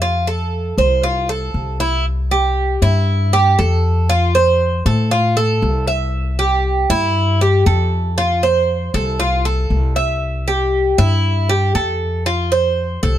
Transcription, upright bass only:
0.00 0.71 F2 medium
0.78 1.50 C2 loud
1.54 2.75 C2 medium
2.82 3.54 G2 loud
3.59 4.80 F2 loud
4.86 5.58 A2 medium
5.62 6.83 C2 medium
6.90 7.62 G2 loud
7.66 8.87 F2 medium
8.94 9.67 C2 loud
9.70 10.92 C2 medium
10.98 11.71 G2 loud
11.75 12.96 F2 medium
13.03 13.18 C2 loud

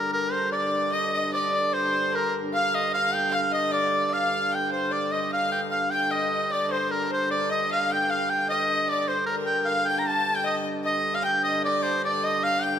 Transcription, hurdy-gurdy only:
0.00 0.11 G2 medium
0.00 0.11 D3 medium
0.11 4.92 G2 medium
0.11 4.92 D3 medium
4.92 9.70 G2 medium
4.92 9.70 D3 medium
9.70 12.79 G2 medium
9.70 12.79 D3 medium

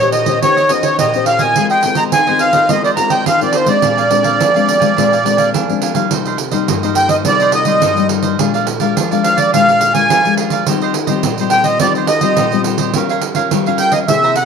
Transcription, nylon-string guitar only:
0.00 0.40 A#2 medium
0.00 0.24 C#4 medium
0.00 0.24 G4 medium
0.00 0.24 C5 medium
0.26 0.37 C#4 medium
0.26 0.37 G4 medium
0.26 0.37 C5 medium
0.42 0.96 D#3 medium
0.42 0.59 C#4 medium
0.42 0.59 G4 medium
0.42 0.59 C5 medium
0.70 1.08 C#4 medium
0.70 1.09 G4 medium
0.70 1.09 C5 medium
1.00 1.54 A#2 medium
1.15 1.38 C#4 medium
1.15 1.38 G4 medium
1.15 1.38 C5 medium
1.41 1.83 C4 medium
1.41 1.84 F4 medium
1.41 1.84 A#4 medium
1.57 2.10 G#3 medium
1.84 2.23 C4 medium
1.84 2.23 F4 medium
1.84 2.23 A#4 medium
2.14 2.67 D#3 medium
2.29 2.52 C4 medium
2.29 2.52 F4 medium
2.29 2.52 A#4 medium
2.54 2.64 C4 medium
2.54 2.65 F4 medium
2.54 2.65 A#4 medium
2.69 3.24 G#3 medium
2.69 2.93 C4 medium
2.69 2.94 F4 medium
2.69 2.94 A#4 medium
2.97 3.36 C4 medium
2.97 3.36 F4 medium
2.97 3.36 A#4 medium
3.26 3.81 D#3 medium
3.42 3.65 C4 medium
3.42 3.65 F4 medium
3.42 3.65 A#4 medium
3.67 4.06 G#3 medium
3.67 4.06 C4 medium
3.67 4.06 D4 medium
3.83 4.37 A#2 medium
4.10 4.49 G#3 medium
4.10 4.49 C4 medium
4.10 4.49 D4 medium
4.40 4.94 F3 medium
4.55 4.79 G#3 medium
4.55 4.79 C4 medium
4.55 4.79 D4 medium
4.81 4.92 G#3 medium
4.81 4.92 C4 medium
4.81 4.92 D4 medium
4.97 5.51 A#2 medium
4.97 5.14 G#3 medium
4.97 5.14 C4 medium
4.97 5.14 D4 medium
5.24 5.63 G#3 medium
5.24 5.63 C4 medium
5.24 5.64 D4 medium
5.54 6.08 F3 medium
5.69 5.93 G#3 medium
5.69 5.93 C4 medium
5.69 5.93 D4 medium
5.95 6.34 G3 medium
5.95 6.34 A#3 medium
5.95 6.34 D#4 medium
6.12 6.66 C3 medium
6.52 6.77 G3 medium
6.52 6.77 A#3 medium
6.52 6.77 D#4 medium
6.69 7.23 G2 medium
6.83 7.21 G3 medium
6.83 7.21 A#3 medium
6.83 7.21 D#4 medium
7.25 7.79 C3 medium
7.25 7.63 G3 medium
7.25 7.63 A#3 medium
7.25 7.64 D#4 medium
7.66 7.91 G3 medium
7.66 7.91 A#3 medium
7.66 7.91 D#4 medium
7.82 8.36 G2 medium
7.97 8.35 G3 medium
7.97 8.35 A#3 medium
7.97 8.35 D#4 medium
8.39 8.93 A#2 medium
8.39 8.66 G#3 medium
8.39 8.66 D4 medium
8.39 8.66 F4 medium
8.80 9.05 G#3 medium
8.80 9.05 D4 medium
8.80 9.05 F4 medium
8.96 9.50 F3 medium
9.12 9.49 G#3 medium
9.12 9.49 D4 medium
9.12 9.50 F4 medium
9.53 10.07 A#2 medium
9.53 9.91 G#3 medium
9.53 9.92 D4 medium
9.53 9.92 F4 medium
9.94 10.19 G#3 medium
9.94 10.19 D4 medium
9.94 10.19 F4 medium
10.11 10.64 F3 medium
10.26 10.63 G#3 medium
10.26 10.63 D4 medium
10.26 10.63 F4 medium
10.67 11.21 D#3 medium
10.67 10.94 G3 medium
10.67 10.94 C4 medium
10.67 10.94 F4 medium
11.08 11.33 G3 medium
11.08 11.33 C4 medium
11.08 11.33 F4 medium
11.24 11.78 A#2 medium
11.40 11.77 G3 medium
11.40 11.77 C4 medium
11.40 11.77 F4 medium
11.81 12.35 D#3 medium
11.81 12.08 G3 medium
11.81 12.08 C4 medium
11.81 12.08 F4 medium
12.22 12.47 G3 medium
12.22 12.47 C4 medium
12.22 12.47 F4 medium
12.38 12.92 A#2 medium
12.53 12.90 G3 medium
12.53 12.91 C4 medium
12.53 12.91 F4 medium
12.95 13.49 G3 medium
12.95 13.22 C#4 medium
12.95 13.22 F4 medium
12.95 13.22 A#4 medium
13.36 13.61 C#4 medium
13.36 13.61 F4 medium
13.36 13.61 A#4 medium
13.52 14.06 G3 medium
13.67 14.05 C#4 medium
13.67 14.05 F4 medium
13.67 14.05 A#4 medium
14.09 14.45 C3 medium
14.09 14.36 A#3 medium
14.09 14.36 E4 medium
14.09 14.36 G#4 medium

